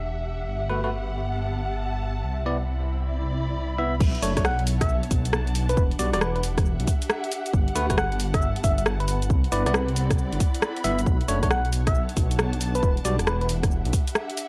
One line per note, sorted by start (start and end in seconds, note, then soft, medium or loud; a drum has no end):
0.00 0.46 E1 medium
0.00 1.20 D4 medium
0.00 2.96 G4 medium
0.00 1.20 E5 medium
0.00 4.02 E5 medium
0.00 2.96 F#5 medium
0.48 2.23 G1 medium
0.48 2.24 B3 medium
0.70 0.80 A3 medium
0.70 0.80 F#4 medium
0.70 0.80 B4 loud
0.84 0.90 A3 medium
0.84 0.90 F#4 medium
0.84 0.90 B4 medium
1.30 2.88 A5 medium
2.24 3.99 C2 medium
2.24 4.01 C4 medium
2.46 2.56 B3 medium
2.46 2.56 E4 medium
2.46 2.56 D5 medium
2.62 4.73 E4 medium
2.62 4.73 B5 medium
3.06 4.01 D5 medium
3.78 3.94 B3 medium
3.78 3.94 E4 medium
3.78 3.94 E5 loud
4.01 4.13 B1 loud
4.01 6.49 B3 medium
4.01 14.48 F#5 medium
4.01 kick loud
4.01 crash loud
4.01 cabasa soft
4.15 closed hi-hat soft
4.23 4.35 F#1 medium
4.23 4.33 A3 medium
4.23 4.33 D4 medium
4.23 4.33 C#5 loud
4.23 open hi-hat loud
4.23 cabasa medium
4.31 5.77 C#5 medium
4.37 5.01 B1 medium
4.37 4.42 A3 medium
4.37 8.25 D4 medium
4.37 4.42 D4 medium
4.37 4.42 C#5 loud
4.37 kick medium
4.37 cross-stick medium
4.37 closed hi-hat medium
4.37 cabasa soft
4.45 4.63 F#5 medium
4.45 cross-stick loud
4.45 cabasa soft
4.59 closed hi-hat soft
4.67 6.49 A5 medium
4.67 open hi-hat loud
4.67 cabasa medium
4.81 4.97 E5 medium
4.81 kick loud
4.81 cross-stick medium
4.81 closed hi-hat medium
4.81 cabasa soft
4.89 cabasa soft
5.03 closed hi-hat medium
5.11 5.76 B1 loud
5.11 kick loud
5.11 open hi-hat loud
5.11 cabasa medium
5.25 closed hi-hat medium
5.25 cabasa soft
5.33 cross-stick loud
5.33 cabasa soft
5.47 closed hi-hat medium
5.55 open hi-hat loud
5.55 cabasa medium
5.69 5.83 B4 loud
5.69 closed hi-hat medium
5.69 cabasa soft
5.77 5.90 E1 loud
5.77 kick loud
5.77 cabasa soft
5.91 10.02 G4 medium
5.91 closed hi-hat soft
5.99 6.12 B1 medium
5.99 6.09 G3 medium
5.99 6.09 F#4 medium
5.99 6.09 D5 loud
5.99 9.88 F#5 medium
5.99 open hi-hat loud
5.99 cabasa medium
6.13 6.77 E1 medium
6.13 6.19 G3 medium
6.13 6.19 F#4 medium
6.13 6.19 D5 loud
6.13 cross-stick medium
6.13 closed hi-hat medium
6.13 cabasa soft
6.21 6.30 B4 medium
6.21 cross-stick loud
6.21 cabasa soft
6.35 6.40 B4 medium
6.35 8.25 E5 medium
6.35 closed hi-hat soft
6.43 open hi-hat loud
6.43 cabasa medium
6.58 kick loud
6.58 cross-stick medium
6.58 closed hi-hat medium
6.58 cabasa soft
6.65 cabasa soft
6.80 6.87 B1 medium
6.80 closed hi-hat medium
6.87 kick loud
6.87 open hi-hat loud
6.87 cabasa medium
7.02 closed hi-hat medium
7.02 cabasa soft
7.10 cross-stick loud
7.10 cabasa soft
7.24 closed hi-hat medium
7.32 open hi-hat loud
7.32 cabasa medium
7.46 closed hi-hat medium
7.46 cabasa soft
7.54 7.66 G1 loud
7.54 9.30 B3 medium
7.54 kick loud
7.54 cabasa soft
7.68 closed hi-hat soft
7.76 7.88 D2 medium
7.76 7.86 A3 medium
7.76 7.86 F#4 medium
7.76 7.86 B4 loud
7.76 10.02 A5 medium
7.76 open hi-hat loud
7.76 cabasa medium
7.90 8.54 G1 medium
7.90 7.95 A3 medium
7.90 7.95 F#4 medium
7.90 7.95 B4 medium
7.90 kick medium
7.90 cross-stick medium
7.90 closed hi-hat medium
7.90 cabasa soft
7.98 8.16 F#5 loud
7.98 cross-stick loud
7.98 cabasa soft
8.12 closed hi-hat soft
8.20 open hi-hat loud
8.20 cabasa medium
8.34 8.50 E5 medium
8.34 kick loud
8.34 cross-stick medium
8.34 closed hi-hat medium
8.34 cabasa soft
8.42 cabasa soft
8.56 closed hi-hat medium
8.64 9.29 G1 loud
8.64 8.73 E5 medium
8.64 kick loud
8.64 open hi-hat loud
8.64 cabasa medium
8.78 8.83 E5 medium
8.78 closed hi-hat medium
8.78 cabasa soft
8.86 cross-stick loud
8.86 cabasa soft
9.00 9.05 B4 medium
9.00 closed hi-hat medium
9.08 9.17 B4 medium
9.08 open hi-hat loud
9.08 cabasa medium
9.22 closed hi-hat medium
9.22 cabasa soft
9.30 9.43 C2 loud
9.30 11.07 C4 medium
9.30 kick loud
9.30 cabasa soft
9.44 11.78 E4 medium
9.44 closed hi-hat soft
9.52 9.65 G1 medium
9.52 9.62 B3 medium
9.52 9.62 E4 medium
9.52 9.88 B4 loud
9.52 9.62 D5 loud
9.52 open hi-hat loud
9.52 cabasa medium
9.66 10.30 C2 medium
9.66 9.72 B3 medium
9.66 9.72 E4 medium
9.66 9.72 D5 loud
9.66 cross-stick medium
9.66 closed hi-hat medium
9.66 cabasa soft
9.74 11.67 B5 medium
9.74 cross-stick loud
9.74 cabasa soft
9.88 closed hi-hat soft
9.93 11.06 D5 medium
9.93 open hi-hat loud
9.93 cabasa medium
10.11 kick loud
10.11 cross-stick medium
10.11 closed hi-hat medium
10.11 cabasa soft
10.18 cabasa soft
10.33 10.39 G1 medium
10.33 closed hi-hat medium
10.40 kick loud
10.40 open hi-hat loud
10.40 cabasa medium
10.55 closed hi-hat medium
10.55 cabasa soft
10.62 cross-stick loud
10.62 cabasa soft
10.77 closed hi-hat medium
10.84 10.97 G1 medium
10.84 11.00 B3 loud
10.84 11.00 E4 medium
10.84 11.00 E5 loud
10.84 open hi-hat loud
10.84 cabasa medium
10.99 11.06 G1 medium
10.99 closed hi-hat medium
10.99 cabasa soft
11.06 11.19 B1 loud
11.06 13.55 B3 medium
11.06 kick loud
11.06 cabasa soft
11.21 closed hi-hat soft
11.28 11.41 F#1 medium
11.28 11.39 A3 medium
11.28 11.39 D4 medium
11.28 11.39 C#5 loud
11.28 open hi-hat loud
11.28 cabasa medium
11.43 12.07 B1 medium
11.43 11.48 A3 medium
11.43 11.48 D4 medium
11.43 11.48 C#5 medium
11.43 kick medium
11.43 cross-stick medium
11.43 closed hi-hat medium
11.43 cabasa soft
11.49 14.48 D4 medium
11.49 11.69 F#5 loud
11.49 cross-stick loud
11.49 cabasa soft
11.65 closed hi-hat soft
11.73 12.83 C#5 medium
11.73 open hi-hat loud
11.73 cabasa medium
11.83 12.03 E5 medium
11.83 13.48 A5 medium
11.83 kick loud
11.83 cross-stick medium
11.83 closed hi-hat medium
11.83 cabasa soft
11.95 cabasa soft
12.09 closed hi-hat medium
12.17 12.82 B1 loud
12.17 kick loud
12.17 open hi-hat loud
12.17 cabasa medium
12.31 closed hi-hat medium
12.31 cabasa soft
12.39 cross-stick loud
12.39 cabasa soft
12.53 closed hi-hat medium
12.61 open hi-hat loud
12.61 cabasa medium
12.75 12.89 B4 loud
12.75 closed hi-hat medium
12.75 cabasa soft
12.83 12.96 E1 loud
12.83 kick loud
12.83 cabasa soft
12.97 closed hi-hat soft
13.05 13.18 B1 medium
13.05 13.15 G3 medium
13.05 13.15 F#4 medium
13.05 13.15 D5 loud
13.05 open hi-hat loud
13.05 cabasa medium
13.09 14.48 F#5 medium
13.19 13.83 E1 medium
13.19 14.48 G4 medium
13.19 cross-stick medium
13.19 closed hi-hat medium
13.19 cabasa soft
13.27 13.36 B4 medium
13.27 cross-stick loud
13.27 cabasa soft
13.41 13.46 B4 medium
13.41 closed hi-hat soft
13.46 14.48 E5 medium
13.46 open hi-hat loud
13.46 cabasa medium
13.63 kick loud
13.63 cross-stick medium
13.63 closed hi-hat medium
13.63 cabasa soft
13.71 cabasa soft
13.85 13.92 B1 medium
13.85 closed hi-hat medium
13.93 kick loud
13.93 open hi-hat loud
13.93 cabasa medium
14.07 closed hi-hat medium
14.07 cabasa soft
14.15 cross-stick loud
14.15 cabasa soft
14.30 closed hi-hat medium
14.37 open hi-hat loud
14.37 cabasa medium